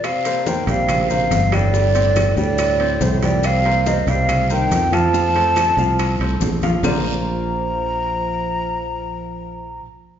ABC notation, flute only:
X:1
M:4/4
L:1/8
Q:1/4=141
K:Bb
V:1 name="Flute"
f2 g f2 f2 d- | d3 d3 c d | f2 e f2 g2 a- | a6 z2 |
b8- | b8 |]